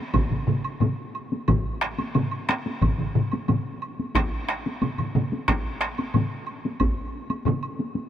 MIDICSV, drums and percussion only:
0, 0, Header, 1, 3, 480
1, 0, Start_track
1, 0, Tempo, 665927
1, 1065, Time_signature, 4, 2, 24, 8
1, 5833, End_track
2, 0, Start_track
2, 0, Title_t, "Taiko and cinematic ensemble drums"
2, 98, Note_on_c, 9, 41, 96
2, 99, Note_on_c, 9, 47, 64
2, 103, Note_on_c, 9, 45, 67
2, 103, Note_on_c, 9, 48, 71
2, 170, Note_off_c, 9, 41, 0
2, 171, Note_off_c, 9, 47, 0
2, 175, Note_off_c, 9, 45, 0
2, 175, Note_off_c, 9, 48, 0
2, 222, Note_on_c, 9, 45, 68
2, 224, Note_on_c, 9, 47, 64
2, 294, Note_off_c, 9, 45, 0
2, 296, Note_off_c, 9, 47, 0
2, 341, Note_on_c, 9, 45, 86
2, 346, Note_on_c, 9, 47, 93
2, 413, Note_off_c, 9, 45, 0
2, 418, Note_off_c, 9, 47, 0
2, 578, Note_on_c, 9, 45, 84
2, 584, Note_on_c, 9, 47, 86
2, 588, Note_on_c, 9, 48, 66
2, 651, Note_off_c, 9, 45, 0
2, 656, Note_off_c, 9, 47, 0
2, 660, Note_off_c, 9, 48, 0
2, 951, Note_on_c, 9, 48, 51
2, 1023, Note_off_c, 9, 48, 0
2, 1065, Note_on_c, 9, 45, 88
2, 1066, Note_on_c, 9, 41, 96
2, 1068, Note_on_c, 9, 47, 85
2, 1069, Note_on_c, 9, 48, 72
2, 1137, Note_off_c, 9, 45, 0
2, 1139, Note_off_c, 9, 41, 0
2, 1140, Note_off_c, 9, 47, 0
2, 1142, Note_off_c, 9, 48, 0
2, 1307, Note_on_c, 9, 37, 62
2, 1308, Note_off_c, 9, 37, 0
2, 1308, Note_on_c, 9, 37, 69
2, 1380, Note_off_c, 9, 37, 0
2, 1431, Note_on_c, 9, 48, 54
2, 1503, Note_off_c, 9, 48, 0
2, 1550, Note_on_c, 9, 48, 71
2, 1553, Note_on_c, 9, 45, 88
2, 1553, Note_on_c, 9, 47, 91
2, 1622, Note_off_c, 9, 48, 0
2, 1625, Note_off_c, 9, 45, 0
2, 1625, Note_off_c, 9, 47, 0
2, 1794, Note_on_c, 9, 37, 68
2, 1797, Note_off_c, 9, 37, 0
2, 1797, Note_on_c, 9, 37, 64
2, 1797, Note_on_c, 9, 48, 51
2, 1869, Note_off_c, 9, 37, 0
2, 1869, Note_off_c, 9, 48, 0
2, 1917, Note_on_c, 9, 48, 50
2, 1989, Note_off_c, 9, 48, 0
2, 2030, Note_on_c, 9, 41, 96
2, 2032, Note_on_c, 9, 45, 66
2, 2034, Note_on_c, 9, 47, 62
2, 2041, Note_on_c, 9, 48, 65
2, 2102, Note_off_c, 9, 41, 0
2, 2104, Note_off_c, 9, 45, 0
2, 2106, Note_off_c, 9, 47, 0
2, 2113, Note_off_c, 9, 48, 0
2, 2151, Note_on_c, 9, 47, 65
2, 2157, Note_on_c, 9, 45, 59
2, 2224, Note_off_c, 9, 47, 0
2, 2229, Note_off_c, 9, 45, 0
2, 2273, Note_on_c, 9, 45, 86
2, 2274, Note_on_c, 9, 47, 84
2, 2345, Note_off_c, 9, 45, 0
2, 2346, Note_off_c, 9, 47, 0
2, 2401, Note_on_c, 9, 48, 57
2, 2473, Note_off_c, 9, 48, 0
2, 2510, Note_on_c, 9, 45, 90
2, 2514, Note_on_c, 9, 47, 80
2, 2515, Note_on_c, 9, 48, 64
2, 2582, Note_off_c, 9, 45, 0
2, 2586, Note_off_c, 9, 47, 0
2, 2587, Note_off_c, 9, 48, 0
2, 2880, Note_on_c, 9, 48, 46
2, 2952, Note_off_c, 9, 48, 0
2, 2989, Note_on_c, 9, 41, 99
2, 2994, Note_on_c, 9, 37, 67
2, 2995, Note_off_c, 9, 37, 0
2, 2995, Note_on_c, 9, 37, 70
2, 3001, Note_on_c, 9, 48, 66
2, 3061, Note_off_c, 9, 41, 0
2, 3067, Note_off_c, 9, 37, 0
2, 3073, Note_off_c, 9, 48, 0
2, 3234, Note_on_c, 9, 37, 63
2, 3238, Note_off_c, 9, 37, 0
2, 3238, Note_on_c, 9, 37, 67
2, 3310, Note_off_c, 9, 37, 0
2, 3360, Note_on_c, 9, 48, 49
2, 3432, Note_off_c, 9, 48, 0
2, 3471, Note_on_c, 9, 45, 62
2, 3474, Note_on_c, 9, 47, 56
2, 3479, Note_on_c, 9, 48, 64
2, 3543, Note_off_c, 9, 45, 0
2, 3547, Note_off_c, 9, 47, 0
2, 3551, Note_off_c, 9, 48, 0
2, 3591, Note_on_c, 9, 45, 59
2, 3598, Note_on_c, 9, 47, 58
2, 3663, Note_off_c, 9, 45, 0
2, 3671, Note_off_c, 9, 47, 0
2, 3712, Note_on_c, 9, 45, 90
2, 3713, Note_on_c, 9, 47, 90
2, 3724, Note_on_c, 9, 48, 48
2, 3784, Note_off_c, 9, 45, 0
2, 3785, Note_off_c, 9, 47, 0
2, 3796, Note_off_c, 9, 48, 0
2, 3842, Note_on_c, 9, 48, 50
2, 3915, Note_off_c, 9, 48, 0
2, 3950, Note_on_c, 9, 37, 71
2, 3951, Note_on_c, 9, 41, 91
2, 3952, Note_off_c, 9, 37, 0
2, 3952, Note_on_c, 9, 37, 70
2, 3962, Note_on_c, 9, 48, 66
2, 4024, Note_off_c, 9, 37, 0
2, 4024, Note_off_c, 9, 41, 0
2, 4035, Note_off_c, 9, 48, 0
2, 4188, Note_on_c, 9, 37, 64
2, 4189, Note_off_c, 9, 37, 0
2, 4189, Note_on_c, 9, 37, 66
2, 4261, Note_off_c, 9, 37, 0
2, 4317, Note_on_c, 9, 48, 57
2, 4389, Note_off_c, 9, 48, 0
2, 4426, Note_on_c, 9, 45, 93
2, 4432, Note_on_c, 9, 47, 83
2, 4439, Note_on_c, 9, 48, 61
2, 4498, Note_off_c, 9, 45, 0
2, 4504, Note_off_c, 9, 47, 0
2, 4511, Note_off_c, 9, 48, 0
2, 4794, Note_on_c, 9, 48, 47
2, 4866, Note_off_c, 9, 48, 0
2, 4902, Note_on_c, 9, 41, 85
2, 4910, Note_on_c, 9, 48, 77
2, 4974, Note_off_c, 9, 41, 0
2, 4982, Note_off_c, 9, 48, 0
2, 5262, Note_on_c, 9, 48, 52
2, 5334, Note_off_c, 9, 48, 0
2, 5372, Note_on_c, 9, 45, 90
2, 5383, Note_on_c, 9, 47, 93
2, 5384, Note_on_c, 9, 48, 68
2, 5444, Note_off_c, 9, 45, 0
2, 5455, Note_off_c, 9, 47, 0
2, 5456, Note_off_c, 9, 48, 0
2, 5616, Note_on_c, 9, 48, 48
2, 5688, Note_off_c, 9, 48, 0
2, 5731, Note_on_c, 9, 48, 48
2, 5804, Note_off_c, 9, 48, 0
2, 5833, End_track
3, 0, Start_track
3, 0, Title_t, "Drums"
3, 99, Note_on_c, 9, 76, 47
3, 171, Note_off_c, 9, 76, 0
3, 465, Note_on_c, 9, 76, 41
3, 537, Note_off_c, 9, 76, 0
3, 584, Note_on_c, 9, 76, 34
3, 656, Note_off_c, 9, 76, 0
3, 828, Note_on_c, 9, 76, 37
3, 900, Note_off_c, 9, 76, 0
3, 1065, Note_on_c, 9, 76, 50
3, 1137, Note_off_c, 9, 76, 0
3, 1431, Note_on_c, 9, 76, 40
3, 1503, Note_off_c, 9, 76, 0
3, 1547, Note_on_c, 9, 76, 41
3, 1619, Note_off_c, 9, 76, 0
3, 1668, Note_on_c, 9, 76, 37
3, 1740, Note_off_c, 9, 76, 0
3, 2034, Note_on_c, 9, 76, 45
3, 2106, Note_off_c, 9, 76, 0
3, 2390, Note_on_c, 9, 76, 36
3, 2462, Note_off_c, 9, 76, 0
3, 2511, Note_on_c, 9, 76, 37
3, 2583, Note_off_c, 9, 76, 0
3, 2753, Note_on_c, 9, 76, 36
3, 2825, Note_off_c, 9, 76, 0
3, 2996, Note_on_c, 9, 76, 47
3, 3068, Note_off_c, 9, 76, 0
3, 3472, Note_on_c, 9, 76, 38
3, 3544, Note_off_c, 9, 76, 0
3, 3592, Note_on_c, 9, 76, 39
3, 3664, Note_off_c, 9, 76, 0
3, 3950, Note_on_c, 9, 76, 46
3, 4022, Note_off_c, 9, 76, 0
3, 4311, Note_on_c, 9, 76, 39
3, 4383, Note_off_c, 9, 76, 0
3, 4426, Note_on_c, 9, 76, 40
3, 4498, Note_off_c, 9, 76, 0
3, 4661, Note_on_c, 9, 76, 41
3, 4733, Note_off_c, 9, 76, 0
3, 4900, Note_on_c, 9, 76, 51
3, 4972, Note_off_c, 9, 76, 0
3, 5261, Note_on_c, 9, 76, 39
3, 5333, Note_off_c, 9, 76, 0
3, 5378, Note_on_c, 9, 76, 39
3, 5450, Note_off_c, 9, 76, 0
3, 5498, Note_on_c, 9, 76, 39
3, 5570, Note_off_c, 9, 76, 0
3, 5833, End_track
0, 0, End_of_file